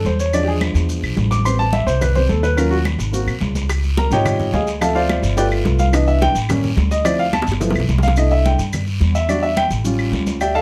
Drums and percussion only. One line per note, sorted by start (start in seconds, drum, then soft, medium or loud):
0.05 high conga medium
0.05 short guiro medium
0.05 maracas soft
0.19 high conga soft
0.19 short guiro medium
0.19 maracas medium
0.33 high conga soft
0.33 long guiro medium
0.33 claves medium
0.33 maracas medium
0.47 high conga soft
0.47 maracas soft
0.61 high conga medium
0.61 short guiro medium
0.61 claves medium
0.61 maracas soft
0.75 high conga soft
0.75 short guiro medium
0.75 maracas medium
0.89 high conga soft
0.89 long guiro medium
0.89 maracas medium
1.03 high conga soft
1.03 claves medium
1.03 maracas soft
1.17 high conga medium
1.17 short guiro medium
1.17 maracas soft
1.31 high conga medium
1.31 short guiro medium
1.31 maracas medium
1.45 high conga soft
1.45 long guiro medium
1.45 claves medium
1.45 maracas medium
1.59 high conga soft
1.59 maracas soft
1.73 high conga loud
1.73 short guiro medium
1.73 maracas soft
1.87 high conga soft
1.87 short guiro medium
1.87 maracas medium
2.01 high conga soft
2.01 low conga medium
2.01 long guiro medium
2.01 claves medium
2.01 maracas medium
2.15 high conga soft
2.15 low conga medium
2.15 maracas soft
2.29 high conga medium
2.29 short guiro medium
2.29 maracas soft
2.43 high conga soft
2.43 short guiro medium
2.43 maracas medium
2.57 high conga soft
2.57 long guiro medium
2.57 claves medium
2.57 maracas medium
2.71 high conga soft
2.71 maracas soft
2.85 high conga medium
2.85 short guiro medium
2.85 claves medium
2.85 maracas soft
2.99 high conga soft
2.99 short guiro medium
2.99 maracas medium
3.13 high conga soft
3.13 long guiro medium
3.13 maracas medium
3.27 high conga soft
3.27 claves medium
3.27 maracas soft
3.41 high conga medium
3.41 short guiro medium
3.41 maracas soft
3.55 high conga medium
3.55 short guiro medium
3.55 maracas medium
3.69 high bongo medium
3.69 high conga soft
3.69 long guiro medium
3.69 claves medium
3.69 maracas medium
3.83 high bongo soft
3.83 high conga soft
3.83 maracas soft
3.97 high bongo medium
3.97 high conga medium
3.97 short guiro medium
3.97 maracas soft
4.11 high conga soft
4.11 short guiro medium
4.11 maracas medium
4.25 high bongo medium
4.25 high conga soft
4.25 low conga medium
4.25 long guiro medium
4.25 claves medium
4.25 maracas medium
4.39 high bongo soft
4.39 high conga soft
4.39 low conga medium
4.39 maracas soft
4.54 high bongo soft
4.54 low bongo medium
4.54 high conga medium
4.54 short guiro medium
4.54 maracas soft
4.67 high bongo soft
4.67 high conga soft
4.67 short guiro medium
4.67 maracas medium
4.81 high bongo medium
4.81 high conga soft
4.81 long guiro medium
4.81 claves medium
4.81 maracas medium
4.95 high bongo soft
4.95 high conga soft
4.95 maracas soft
5.09 high bongo medium
5.09 high conga loud
5.09 short guiro medium
5.09 claves medium
5.09 maracas soft
5.23 high conga soft
5.23 short guiro medium
5.23 maracas medium
5.37 high bongo medium
5.37 high conga soft
5.37 long guiro medium
5.37 maracas loud
5.51 high bongo soft
5.51 high conga soft
5.51 claves medium
5.51 maracas soft
5.65 high bongo soft
5.65 low bongo medium
5.65 high conga medium
5.65 short guiro medium
5.65 maracas soft
5.79 high bongo soft
5.79 high conga medium
5.79 short guiro medium
5.79 maracas medium
5.93 high bongo medium
5.93 high conga soft
5.93 long guiro medium
5.93 claves medium
5.93 maracas medium
6.07 high bongo soft
6.07 high conga soft
6.07 maracas soft
6.21 high bongo medium
6.21 high conga loud
6.21 short guiro medium
6.21 maracas soft
6.35 high conga soft
6.35 short guiro medium
6.35 maracas medium
6.49 high bongo medium
6.49 high conga soft
6.49 low conga loud
6.49 long guiro medium
6.49 claves medium
6.49 maracas loud
6.63 high bongo soft
6.63 high conga soft
6.63 low conga medium
6.63 maracas soft
6.77 high bongo soft
6.77 low bongo medium
6.77 high conga medium
6.77 short guiro medium
6.77 maracas soft
6.91 high bongo soft
6.91 high conga soft
6.91 short guiro medium
6.91 maracas medium
7.05 high bongo medium
7.05 high conga soft
7.05 long guiro medium
7.05 claves medium
7.05 maracas medium
7.19 high bongo soft
7.19 high conga soft
7.19 maracas soft
7.33 high bongo medium
7.33 high conga medium
7.33 short guiro medium
7.33 claves medium
7.33 maracas soft
7.42 high bongo loud
7.47 high conga soft
7.47 short guiro medium
7.47 maracas medium
7.52 high bongo medium
7.61 low bongo medium
7.61 high conga soft
7.61 long guiro medium
7.61 maracas medium
7.70 low bongo loud
7.75 high conga soft
7.75 claves medium
7.75 maracas soft
7.80 low bongo medium
7.89 high conga medium
7.89 short guiro medium
7.89 maracas soft
7.98 low bongo medium
8.03 high conga medium
8.03 short guiro medium
8.03 maracas medium
8.08 low bongo loud
8.16 high conga soft
8.16 long guiro medium
8.16 claves medium
8.16 maracas medium
8.31 high conga soft
8.31 maracas soft
8.45 high conga medium
8.45 short guiro medium
8.45 maracas soft
8.59 high conga soft
8.59 short guiro medium
8.59 maracas medium
8.73 high conga soft
8.73 low conga medium
8.73 long guiro medium
8.73 claves medium
8.73 maracas medium
8.87 high conga soft
8.87 maracas soft
9.01 high conga medium
9.01 short guiro medium
9.01 maracas soft
9.15 high conga soft
9.15 short guiro medium
9.15 maracas medium
9.29 high conga soft
9.29 long guiro medium
9.29 claves medium
9.29 maracas medium
9.43 high conga soft
9.43 maracas soft
9.57 high conga medium
9.57 short guiro medium
9.57 claves medium
9.57 maracas soft
9.71 high conga soft
9.71 short guiro medium
9.71 maracas medium
9.85 high conga soft
9.85 long guiro medium
9.85 maracas medium
9.99 high conga soft
9.99 claves medium
9.99 maracas soft
10.13 high conga medium
10.13 short guiro medium
10.13 maracas soft
10.26 high conga medium
10.26 short guiro medium
10.26 maracas medium
10.41 long guiro medium
10.41 claves medium
10.41 maracas medium
10.54 high conga soft
10.54 maracas soft